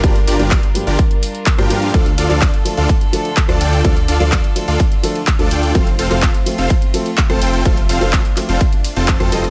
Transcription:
<<
  \new Staff \with { instrumentName = "Supersaw synth" } { \time 4/4 \key d \phrygian \tempo 4 = 126 <d' f' g' bes' d''>16 r16 <d' f' g' bes' d''>16 <d' f' g' bes' d''>8 r8 <d' f' g' bes' d''>16 r4 r16 <d' f' g' bes' g''>16 <d' f' g' bes' f''>8 | <d' f' a' d'' f''>16 r16 <d' f' a' d'' f''>16 <d' f' a' d'' f''>8 r8 <d' f' a' d'' f''>16 r4 r16 <d' f' a' d'' a''>16 <d' f' a' d'' g''>8 | <d' f' a' d'' f''>16 r16 <d' f' a' d'' f''>16 <d' f' a' d'' f''>8 r8 <d' f' a' d'' f''>16 r4 r16 <d' f' a' d'' a''>16 <d' f' a' d'' g''>8 | <c' f' a' c'' f''>16 r16 <c' f' a' c'' f''>16 <c' f' a' c'' f''>8 r8 <c' f' a' c'' f''>16 r4 r16 <c' f' a' c'' a''>16 <c' f' a' c'' g''>8 |
<c' f' a' f''>16 r16 <c' f' a' c'' f''>16 <c' f' a' c'' f''>8 r8 <c' f' a' c'' f''>16 r8. <c' f' a' c'' a''>8 <c' f' a' c'' a''>16 <c' f' a' c'' ees''>16 r16 | }
  \new Staff \with { instrumentName = "String section" } { \time 4/4 \key d \phrygian << { <g d' f' bes'>1 | <d f' a'>1~ | <d f' a'>1 | c'1 |
d'1 | } \\ { r1 | r1 | r1 | a1~ |
a1 | } >> }
  \new Staff \with { instrumentName = "Felt piano" } { \time 4/4 \key d \phrygian <g, f bes d' g'>16 r8 <g, f bes d' g'>16 r8 <g, f bes d' g'>16 r4. <g, f bes d' g'>16 <f bes d' g'>8 | <f a d' a'>16 r8 <f a d' a'>16 r8 <f a d' a'>16 r8. <f a d' a'>16 r8 <f a d' a'>16 r8 | <f a d' a'>16 r8 <f a d' a'>16 r8 <f a d' a'>16 r8. <f a d' a'>16 r8 <f a d' a'>16 r8 | <f a c' a'>16 r8 <f a c' a'>16 r8 <f a c' a'>16 r8. <f a c' a'>16 r8 <f a c' a'>16 r8 |
<f a c' a'>16 r8 <f a c' a'>16 r8 <f a c' a'>16 r4. <f a c' a'>16 <g, f a c' a'>8 | }
  \new Staff \with { instrumentName = "Detuned saw bass" } { \clef bass \time 4/4 \key d \phrygian g,,8 g,,16 g,,16 r8. g,,16 r4 r16 g,16 g,8 | d,8 d,16 d,16 r8. d,16 r4 r16 d,16 d,8 | d,8 d,16 d,16 r8. d,16 r4 r16 d,16 d,8 | f,,8 f,,16 f,,16 r8. f,,16 r4 r16 f,,16 f,,8 |
f,,8 f,,16 f,,16 r8. f,,16 r8. f,,8 f,16 f,,8 | }
  \new DrumStaff \with { instrumentName = "Drums" } \drummode { \time 4/4 <hh bd>16 hh16 hho16 hh16 <hc hh bd ss>16 hh16 hho16 hh16 <hh bd>16 hh16 hho16 hh16 <hc hh bd>16 <hh ss>16 hho16 hh16 | <hh bd cymr>16 hh16 <hho cymr>16 <hc hh>16 <hc hh bd cymr ss>16 hh16 <hho cymr>16 hh16 <hh bd cymr>16 hh16 <hho cymr>16 hh16 <hc hh bd cymr>16 <hh ss>16 <hho cymr>16 hh16 | <hh bd cymr>16 hh16 <hho cymr>16 hh16 <hc hh bd cymr ss>16 hh16 <hho cymr>16 hh16 <hh bd cymr>16 hh16 <hho cymr>16 hh16 <hc hh bd cymr>16 hh16 <hho cymr>16 hh16 | <hh bd cymr>16 hh16 <hho cymr>16 <hc hh>16 <hc hh bd cymr ss>16 hh16 <hho cymr>16 hh16 <hh bd cymr>16 hh16 <hho cymr>16 hh16 <hc hh bd cymr>16 <hh ss>16 <hho cymr>16 hh16 |
<hh bd cymr>16 hh16 <hho cymr>16 hh16 <hc hh bd cymr ss>16 hh16 <hc hho cymr>16 hh16 <hh bd cymr>16 hh16 <hho cymr>16 hh16 <hc hh bd cymr>16 <hh ss>16 <hho cymr>16 hh16 | }
>>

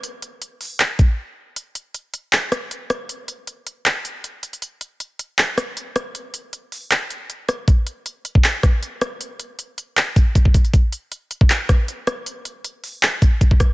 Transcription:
\new DrumStaff \with { instrumentName = "Drums" } \drummode { \time 4/4 \tempo 4 = 157 hh8 hh8 hh8 hho8 <hc hh>8 <hh bd>8 r4 | hh8 hh8 hh8 hh8 <hc hh>8 <hh ss>8 hh8 <hh ss>8 | hh8 hh8 hh8 hh8 <hc hh>8 hh8 hh8 <hh hho>16 hh16 | hh8 hh8 hh8 hh8 <hc hh>8 <hh ss>8 hh8 <hh ss>8 |
hh8 hh8 hh8 hho8 <hc hh>8 hh8 hh8 <hh ss>8 | <hh bd>8 hh8 hh8 hh16 bd16 <hc hh>8 <hh bd ss>8 hh8 <hh ss>8 | hh8 hh8 hh8 hh8 <hc hh>8 <hh bd>8 <hh bd>16 bd16 <hh hho bd>16 hh16 | <hh bd>8 hh8 hh8 hh16 bd16 <hc hh>8 <hh bd ss>8 hh8 <hh ss>8 |
hh8 hh8 hh8 hho8 <hc hh>8 <hh bd>8 <hh bd>16 bd16 <hh bd ss>8 | }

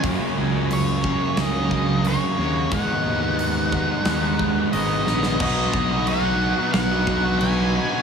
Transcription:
<<
  \new Staff \with { instrumentName = "Lead electric guitar" } { \time 4/4 \key b \lydian \tempo 4 = 90 r4 cis''4 dis''4 cis''4 | fis''2. dis''4 | dis''4 fis''4 fis''4 gis''4 | }
  \new Staff \with { instrumentName = "Overdriven electric guitar" } { \time 4/4 \key b \lydian <fis, cis fis ais cis'>4. <fis ais cis'>8 <fis, cis fis ais cis'>4 <cis fis ais cis'>8 <fis ais cis'>8 | <gis, dis gis b dis'>4. <gis b dis'>8 <gis, dis gis b dis'>4 <dis gis b dis'>8 <gis b dis'>8 | <b, fis b dis' fis'>8 <fis b dis' fis'>16 <b dis' fis'>16 <b, fis b dis' fis'>8. <b dis' fis'>8 <b dis' fis'>16 <fis b dis' fis'>16 <b dis' fis'>16 <b, fis b dis' fis'>8 <fis b dis' fis'>16 <b dis' fis'>16 | }
  \new Staff \with { instrumentName = "Fingered electric bass" } { \clef bass \time 4/4 \key b \lydian fis,16 r16 cis,4. cis,4. dis,8 | gis,16 r16 dis,4. dis,4 gis,,8 ais,,8 | b,,8 b,,4. b,,2 | }
  \new DrumStaff \with { instrumentName = "Drums" } \drummode { \time 4/4 <hho bd>4 hho8 bd8 <hho sn>8 bd8 hho4 | <hho bd>4 hho8 bd8 <hho sn>8 bd8 hho8 sn16 sn16 | <cymc bd>8 bd8 cymc4 <cymc sn>8 bd8 cymc4 | }
>>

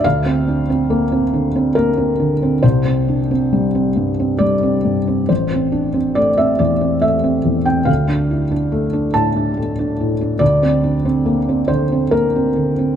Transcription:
\new Staff \with { instrumentName = "Felt piano" } { \time 3/4 \key bes \lydian \tempo 4 = 70 << { f''2 bes'4 | c''2 d''4 | c''4 d''16 e''16 d''8 e''8. g''16 | f''4. a''8 r4 |
d''4. c''8 bes'4 | } \\ { d,16 c'16 d'16 c'16 bes16 c'16 d16 c'16 bes16 c'16 d16 c'16 | c,16 c'16 d'16 c'16 g16 c'16 g,16 c'16 g16 c'16 g,16 c'16 | a,,16 c'16 d'16 c'16 a16 c'16 e,16 c'16 a16 c'16 e,16 c'16 | d,16 d'16 e'16 d'16 a16 d'16 a,16 d'16 a16 d'16 a,16 d'16 |
d,16 c'16 d'16 c'16 bes16 c'16 d16 c'16 bes16 c'16 d16 c'16 | } >> }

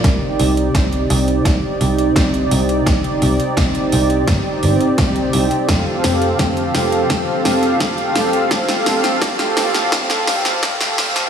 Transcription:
<<
  \new Staff \with { instrumentName = "Analog synth pad" } { \time 4/4 \key c \dorian \tempo 4 = 85 << { <c ees' g' d''>1~ | <c ees' g' d''>1 | <f a' f''>1~ | <f a' f''>1 | } \\ { c'1~ | c'1~ | c'1~ | c'1 | } >> }
  \new Staff \with { instrumentName = "Picked electric bass" } { \clef bass \time 4/4 \key c \dorian c,8 c,8 c,8 c,8 c,8 c,8 c,8 c,8 | c,8 c,8 c,8 c,8 g,,8 g,,8 c,8 c,8 | f,,8 f,,8 f,,8 f,,8 f,,8 f,,8 f,,8 f,,8 | f,,8 f,,8 f,,8 f,,8 c,8 f,,8 f,,8 f,,8 | }
  \new DrumStaff \with { instrumentName = "Drums" } \drummode { \time 4/4 <hh bd sn>8 hho16 hh16 <hh bd sn>16 hh16 hho16 hh16 <hh bd sn>8 hho16 hh16 <hh bd sn>16 hh16 hho16 hh16 | <hh bd sn>16 hh16 hho16 hh16 <hh bd sn>16 hh16 hho16 hh16 <hh bd sn>8 hho16 hh16 <hh bd sn>16 hh16 hho16 hh16 | <hh bd sn>8 <hho sn>16 hh16 <hh bd sn>16 hh16 <hho sn>16 hh16 <hh bd sn>8 <hho sn>16 hh16 <hh bd sn>16 hh16 <hho sn>16 hh16 | <hh bd sn>16 <hh sn>16 <hho sn>16 <hh sn>16 <hh bd sn>16 <hh sn>16 <hho sn>16 <hh sn>16 <hh bd sn>16 sn16 <hho sn>16 <hh sn>16 <hh bd sn>16 <hh sn>16 <hho sn>16 <hh sn>16 | }
>>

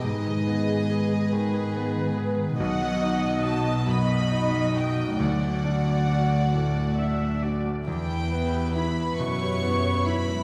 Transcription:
<<
  \new Staff \with { instrumentName = "Violin section" } { \time 6/8 \key d \major \tempo 4. = 46 dis''2~ dis''8 r8 | fis''4 a''8 b''4 g''8 | fis''2~ fis''8 r8 | g''4 b''8 cis'''4 b''8 | }
  \new Staff \with { instrumentName = "Viola section" } { \time 6/8 \key d \major gis'4. b'4. | dis''4. dis''4. | d''4. d''8 e''8 d''8 | r4. cis''4. | }
  \new Staff \with { instrumentName = "Violin section" } { \time 6/8 \key d \major << { b'2. | dis''4. dis''4. | d''2~ d''8. r16 | b'2. | } \\ { gis'2. | fis'4. fis'4. | fis'2~ fis'8. r16 | e'4. e'4. | } >> }
  \new Staff \with { instrumentName = "Harp" } { \time 6/8 \key d \major <gis, b b'>16 dis16 b16 gis'16 b'16 gis'16 b'16 gis'16 b16 dis16 b16 dis16 | b,16 fis16 dis'8 b'16 dis''16 b'8 dis'16 fis16 dis'16 fis16 | d16 a16 d'16 fis'16 a'16 d''16 a'16 fis'16 d'16 a16 d'16 a16 | e8 e'16 g'16 b'16 e''16 b'16 g'16 e'8 e'16 gis16 | }
  \new Staff \with { instrumentName = "Grand piano" } { \time 6/8 \key d \major gis,8 b8 gis'8 dis8 b8 gis'8 | b,,8 dis'8 fis'8 fis,8 dis'8 fis8 | d,8 d'8 fis'8 a,8 d'8 fis'8 | e,8 b8 e'8 b,8 b8 e'8 | }
  \new Staff \with { instrumentName = "Cello section" } { \clef bass \time 6/8 \key d \major gis,2. | b,2. | d,2~ d,8. r16 | e,4. fis,4. | }
>>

